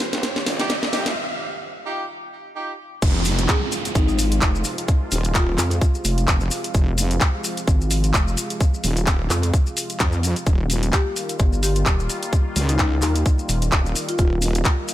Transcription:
Already playing: D#3 G3 C4 D#4 F4 G4 F5, riser
0.00 snare, open hi-hat
0.13 G1, snare, closed hi-hat
0.23 snare, closed hi-hat
0.36 snare
0.46 C#2, snare, open hi-hat
0.60 D#4 F4 G4, snare, closed hi-hat
0.70 snare, closed hi-hat
0.83 snare
0.93 D#1 D#4 F4 G4, snare, open hi-hat
1.06 snare, closed hi-hat
1.86 D#4 F4 G4
2.56 D#4 F4 G4
3.02 F1 C3 F3 G#3 F4, kick, closed hi-hat, crash, downlifter, maracas
3.25 open hi-hat, maracas
3.38 closed hi-hat, maracas
3.49 G#4, kick, clap, closed hi-hat, maracas
3.72 open hi-hat, maracas
3.85 closed hi-hat, maracas
3.95 G#1 D#4, kick, closed hi-hat, maracas
4.08 D#4, maracas
4.19 open hi-hat, maracas
4.32 closed hi-hat, maracas
4.41 F1, kick, clap, closed hi-hat, maracas
4.55 maracas
4.64 open hi-hat, maracas
4.78 closed hi-hat, maracas
4.88 kick, closed hi-hat, maracas
5.12 D#1, open hi-hat, maracas
5.24 closed hi-hat, maracas
5.35 F4, kick, clap, closed hi-hat, maracas
5.58 F2, clap, open hi-hat, maracas
5.71 closed hi-hat, maracas
5.81 kick, closed hi-hat, maracas
5.95 maracas
6.05 F1, open hi-hat, maracas
6.18 closed hi-hat, maracas
6.28 F1, kick, clap, closed hi-hat, maracas
6.40 maracas
6.51 open hi-hat, maracas
6.64 closed hi-hat, maracas
6.74 F1, kick, closed hi-hat, maracas
6.98 open hi-hat, maracas
7.11 closed hi-hat, maracas
7.21 kick, clap, closed hi-hat, maracas
7.44 open hi-hat, maracas
7.57 closed hi-hat, maracas
7.67 G#1, kick, closed hi-hat, maracas
7.81 maracas
7.91 open hi-hat, maracas
8.04 closed hi-hat, maracas
8.14 F1, kick, clap, closed hi-hat, maracas
8.28 maracas
8.37 open hi-hat, maracas
8.50 closed hi-hat, maracas
8.60 kick, closed hi-hat, maracas
8.74 maracas
8.84 D#1, open hi-hat, maracas
8.97 closed hi-hat, maracas
9.07 kick, clap, closed hi-hat, maracas
9.30 F2, clap, open hi-hat, maracas
9.43 closed hi-hat, maracas
9.54 kick, closed hi-hat, maracas
9.66 maracas
9.77 open hi-hat, maracas
9.90 closed hi-hat, maracas
10.00 F2, kick, clap, closed hi-hat, maracas
10.12 maracas
10.23 open hi-hat, maracas
10.36 closed hi-hat, maracas
10.46 D#1 D#3 G3 A#3 F4, kick, closed hi-hat, maracas
10.70 open hi-hat, maracas
10.83 closed hi-hat, maracas
10.93 G4, kick, clap, closed hi-hat, maracas
11.16 open hi-hat, maracas
11.29 closed hi-hat, maracas
11.39 G1, kick, closed hi-hat, maracas
11.53 maracas
11.63 G4, open hi-hat, maracas
11.76 closed hi-hat, maracas
11.86 D#1, kick, clap, closed hi-hat, maracas
12.00 maracas
12.10 open hi-hat, maracas
12.23 closed hi-hat, maracas
12.33 kick, closed hi-hat, maracas
12.56 C#2, open hi-hat, maracas
12.69 D#4, closed hi-hat, maracas
12.79 kick, clap, closed hi-hat, maracas
13.02 D#2, clap, open hi-hat, maracas
13.16 closed hi-hat, maracas
13.26 kick, closed hi-hat, maracas
13.39 maracas
13.49 D#1, open hi-hat, maracas
13.62 closed hi-hat, maracas
13.72 D#1, kick, clap, closed hi-hat, maracas
13.86 maracas
13.95 open hi-hat, maracas
14.09 F4, closed hi-hat, maracas
14.18 D#1 D#4 F4, kick, closed hi-hat, maracas
14.42 open hi-hat, maracas
14.55 closed hi-hat, maracas
14.65 kick, clap, closed hi-hat, maracas
14.88 open hi-hat, maracas

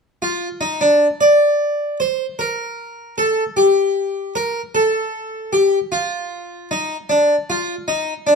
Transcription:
0.22 F4
0.61 D#4
0.81 D4
1.21 D5
2.00 C5
2.39 A#4
3.18 A4
3.57 G4
4.35 A#4
4.75 A4
5.53 G4
5.92 F4
6.71 D#4
7.09 D4
7.50 F4
7.88 D#4
8.27 D4

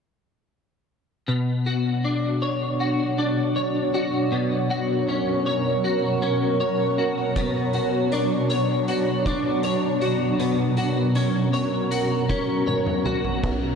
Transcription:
1.28 B2 F#3 D4 C#5
1.66 F#4
2.04 D4
2.42 C#5
2.80 F#4
3.18 D4
3.56 C#5
3.94 F#4
4.32 B2 A#4
4.70 F#4
5.09 C#4
5.46 C#5
5.84 F#4
6.22 C#4
6.60 C#5
6.98 F#4
7.36 B2 F#3 D4, kick, closed hi-hat
7.73 F#4, closed hi-hat
8.12 D4, closed hi-hat
8.50 C#5, closed hi-hat
8.88 F#4, closed hi-hat
9.26 D4, kick, closed hi-hat
9.63 C#5, closed hi-hat
10.01 F#4, closed hi-hat
10.39 B2 A#4, closed hi-hat
10.77 F#4, closed hi-hat
11.15 C#4, closed hi-hat
11.53 C#5, closed hi-hat
11.91 F#4, closed hi-hat
12.29 C#4, kick, closed hi-hat
12.67 C#5, high tom
12.86 mid tom
13.06 F#4, mid tom
13.24 floor tom
13.43 B1 D3 B3, kick, crash

